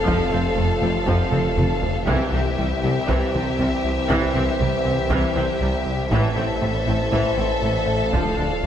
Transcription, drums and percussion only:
0.07 taiko medium
1.07 taiko medium
1.33 taiko mid medium
1.58 taiko mid medium
1.83 taiko low medium
2.08 taiko medium
3.09 taiko medium
4.10 taiko medium
5.11 taiko medium
6.12 taiko medium
7.12 taiko medium
8.13 taiko medium

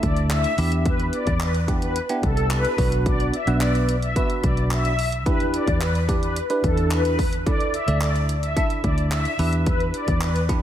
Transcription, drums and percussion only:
0.03 kick loud
0.03 closed hi-hat medium
0.17 closed hi-hat medium
0.30 clap loud
0.30 closed hi-hat loud
0.44 closed hi-hat medium
0.58 open hi-hat medium
0.72 closed hi-hat medium
0.86 kick loud
0.86 closed hi-hat medium
1.00 closed hi-hat soft
1.13 closed hi-hat medium
1.27 kick medium
1.27 closed hi-hat medium
1.40 clap loud
1.40 closed hi-hat loud
1.55 closed hi-hat medium
1.68 kick loud
1.68 closed hi-hat medium
1.82 closed hi-hat medium
1.96 closed hi-hat loud
2.09 closed hi-hat medium
2.23 kick loud
2.23 closed hi-hat medium
2.37 closed hi-hat medium
2.51 clap loud
2.51 closed hi-hat loud
2.65 closed hi-hat medium
2.78 kick loud
2.78 open hi-hat medium
2.92 closed hi-hat medium
3.06 kick loud
3.06 closed hi-hat medium
3.20 closed hi-hat soft
3.34 closed hi-hat medium
3.47 closed hi-hat medium
3.61 clap loud
3.61 closed hi-hat loud
3.75 closed hi-hat medium
3.89 closed hi-hat medium
4.03 closed hi-hat medium
4.16 kick loud
4.16 closed hi-hat loud
4.30 closed hi-hat medium
4.44 kick loud
4.44 closed hi-hat medium
4.57 closed hi-hat medium
4.71 clap loud
4.71 closed hi-hat medium
4.85 closed hi-hat medium
4.99 open hi-hat medium
5.12 closed hi-hat medium
5.26 kick loud
5.26 closed hi-hat medium
5.40 closed hi-hat soft
5.54 closed hi-hat medium
5.68 kick medium
5.68 closed hi-hat medium
5.81 clap loud
5.81 closed hi-hat loud
5.95 closed hi-hat medium
6.09 kick loud
6.09 closed hi-hat medium
6.23 closed hi-hat medium
6.36 closed hi-hat loud
6.50 closed hi-hat medium
6.64 kick loud
6.64 closed hi-hat medium
6.77 closed hi-hat medium
6.91 clap loud
6.91 closed hi-hat medium
7.05 closed hi-hat medium
7.19 kick loud
7.19 open hi-hat medium
7.33 closed hi-hat medium
7.47 kick loud
7.47 closed hi-hat medium
7.60 closed hi-hat soft
7.74 closed hi-hat medium
7.88 closed hi-hat medium
8.01 clap loud
8.01 closed hi-hat loud
8.16 closed hi-hat medium
8.29 closed hi-hat medium
8.43 closed hi-hat medium
8.57 kick loud
8.57 closed hi-hat loud
8.70 closed hi-hat medium
8.84 kick loud
8.84 closed hi-hat medium
8.98 closed hi-hat medium
9.11 clap loud
9.11 closed hi-hat loud
9.25 closed hi-hat medium
9.39 open hi-hat medium
9.53 closed hi-hat medium
9.66 kick loud
9.66 closed hi-hat medium
9.80 closed hi-hat soft
9.94 closed hi-hat medium
10.08 kick loud
10.08 closed hi-hat medium
10.21 clap loud
10.21 closed hi-hat loud
10.36 closed hi-hat medium
10.49 kick loud
10.49 closed hi-hat medium

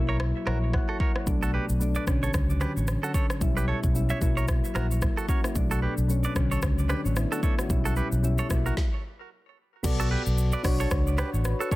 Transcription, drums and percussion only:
0.20 cross-stick loud
0.47 cross-stick loud
0.73 kick medium
0.73 cross-stick medium
1.00 kick loud
1.16 cross-stick medium
1.27 kick loud
1.27 shaker medium
1.43 shaker medium
1.69 shaker medium
1.81 shaker medium
1.95 shaker medium
2.07 kick medium
2.07 cross-stick medium
2.07 shaker medium
2.23 shaker medium
2.34 kick loud
2.34 cross-stick loud
2.34 shaker medium
2.50 shaker soft
2.61 cross-stick medium
2.61 shaker soft
2.77 shaker soft
2.87 cross-stick medium
2.87 shaker medium
3.04 shaker medium
3.14 kick loud
3.14 shaker medium
3.30 cross-stick medium
3.30 shaker medium
3.41 kick loud
3.41 shaker medium
3.57 shaker medium
3.83 kick medium
3.83 shaker medium
3.95 shaker medium
4.09 shaker medium
4.21 kick medium
4.21 shaker medium
4.38 shaker medium
4.48 kick medium
4.48 cross-stick loud
4.48 shaker medium
4.64 shaker soft
4.75 cross-stick loud
4.75 shaker soft
4.91 shaker soft
5.02 kick medium
5.02 cross-stick medium
5.02 shaker medium
5.18 shaker medium
5.29 kick loud
5.29 shaker medium
5.44 cross-stick medium
5.44 shaker medium
5.55 kick loud
5.55 shaker medium
5.71 shaker medium
5.98 shaker medium
6.10 shaker medium
6.24 shaker medium
6.36 kick medium
6.36 cross-stick medium
6.36 shaker medium
6.52 shaker medium
6.62 kick medium
6.62 cross-stick loud
6.62 shaker medium
6.79 shaker soft
6.89 cross-stick medium
6.89 shaker soft
7.06 shaker soft
7.16 cross-stick medium
7.16 shaker medium
7.33 shaker medium
7.43 kick loud
7.43 shaker medium
7.59 cross-stick medium
7.59 shaker medium
7.70 kick loud
7.70 shaker medium
7.86 shaker medium
7.96 shaker soft
8.12 shaker medium
8.24 shaker medium
8.38 shaker medium
8.50 kick medium
8.50 cross-stick medium
8.50 shaker medium
8.66 shaker medium
8.77 kick loud
8.77 snare medium
9.84 kick loud
9.84 crash loud
9.84 shaker medium
10.00 shaker medium
10.26 shaker medium
10.38 shaker medium
10.52 shaker medium
10.64 kick loud
10.64 cross-stick loud
10.64 open hi-hat medium
10.64 shaker medium
10.80 shaker medium
10.91 kick loud
10.91 cross-stick loud
10.91 shaker medium
11.07 shaker medium
11.18 cross-stick loud
11.18 shaker soft
11.34 shaker soft
11.45 cross-stick medium
11.45 shaker medium
11.61 shaker medium
11.71 kick loud
11.71 shaker medium

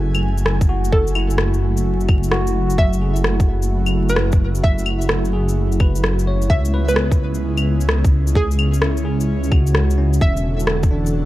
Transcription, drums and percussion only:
0.15 claves medium
0.15 shaker soft
0.38 shaker medium
0.46 cross-stick loud
0.61 kick loud
0.61 shaker soft
0.84 shaker medium
0.92 kick loud
1.07 shaker soft
1.15 claves medium
1.30 shaker medium
1.38 cross-stick loud
1.54 shaker soft
1.77 shaker medium
2.00 shaker soft
2.08 kick loud
2.08 claves soft
2.23 shaker medium
2.31 cross-stick loud
2.47 shaker soft
2.70 shaker medium
2.78 kick loud
2.93 shaker soft
3.16 shaker medium
3.24 cross-stick loud
3.40 kick loud
3.40 shaker soft
3.62 shaker medium
3.86 claves medium
3.86 shaker soft
4.09 shaker medium
4.16 cross-stick loud
4.32 kick loud
4.32 shaker soft
4.55 shaker medium
4.64 kick loud
4.79 shaker soft
4.86 claves medium
5.02 shaker medium
5.09 cross-stick loud
5.25 shaker soft
5.49 shaker medium
5.72 shaker soft
5.80 kick loud
5.80 claves soft
5.95 shaker medium
6.04 cross-stick loud
6.19 shaker soft
6.42 shaker medium
6.50 kick loud
6.65 shaker soft
6.89 shaker medium
6.96 cross-stick loud
7.12 kick loud
7.12 shaker soft
7.34 shaker medium
7.57 claves medium
7.57 shaker soft
7.81 shaker soft
7.89 cross-stick loud
8.04 kick loud
8.04 shaker soft
8.27 shaker medium
8.35 kick loud
8.51 shaker soft
8.59 claves medium
8.74 shaker medium
8.82 cross-stick loud
8.97 shaker soft
9.21 shaker medium
9.44 shaker soft
9.52 kick loud
9.52 claves soft
9.67 shaker soft
9.75 cross-stick loud
9.90 shaker soft
10.13 shaker medium
10.21 kick loud
10.37 shaker soft
10.60 shaker medium
10.67 cross-stick loud
10.83 kick medium
10.83 shaker soft
11.06 shaker medium

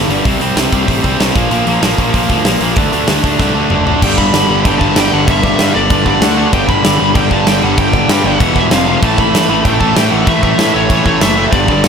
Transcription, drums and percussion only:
0.10 open hi-hat medium
0.25 kick loud
0.25 open hi-hat medium
0.41 open hi-hat medium
0.57 snare loud
0.57 open hi-hat medium
0.72 kick medium
0.72 open hi-hat medium
0.88 kick loud
0.88 open hi-hat medium
1.04 kick medium
1.04 open hi-hat medium
1.20 snare loud
1.20 open hi-hat medium
1.36 kick loud
1.36 open hi-hat medium
1.51 open hi-hat medium
1.67 open hi-hat medium
1.83 snare loud
1.83 open hi-hat medium
1.98 kick medium
1.98 open hi-hat medium
2.14 kick medium
2.14 open hi-hat medium
2.29 kick medium
2.29 open hi-hat medium
2.45 snare loud
2.45 open hi-hat medium
2.61 open hi-hat medium
2.76 kick loud
2.76 open hi-hat medium
2.93 open hi-hat medium
3.08 snare loud
3.08 open hi-hat medium
3.24 kick medium
3.24 open hi-hat medium
3.40 kick loud
3.40 snare medium
3.70 mid tom medium
3.87 floor tom medium
4.02 kick loud
4.02 crash loud
4.02 crash medium
4.18 kick loud
4.34 snare loud
4.34 crash medium
4.65 kick loud
4.65 crash medium
4.81 kick medium
4.96 snare loud
4.96 crash medium
5.28 kick loud
5.28 crash medium
5.43 kick loud
5.59 snare loud
5.59 crash medium
5.90 kick loud
5.90 crash medium
6.06 kick medium
6.22 snare loud
6.22 crash medium
6.53 kick loud
6.53 crash medium
6.69 kick loud
6.85 snare loud
6.85 crash medium
7.15 kick loud
7.15 crash medium
7.31 kick medium
7.47 snare loud
7.47 crash medium
7.78 kick loud
7.78 crash medium
7.93 kick loud
8.09 snare loud
8.09 crash medium
8.40 kick loud
8.40 crash medium
8.56 kick medium
8.71 snare loud
8.71 crash medium
9.03 kick loud
9.03 crash medium
9.18 kick loud
9.35 snare loud
9.35 crash medium
9.65 kick loud
9.65 crash medium
9.81 kick medium
9.96 snare loud
9.96 crash medium
10.27 kick loud
10.27 crash medium
10.43 kick medium
10.59 snare loud
10.59 crash medium
10.90 kick loud
10.90 crash medium
11.06 kick medium
11.21 snare loud
11.21 crash medium
11.53 kick loud
11.53 crash medium
11.68 kick medium
11.84 snare loud
11.84 crash medium

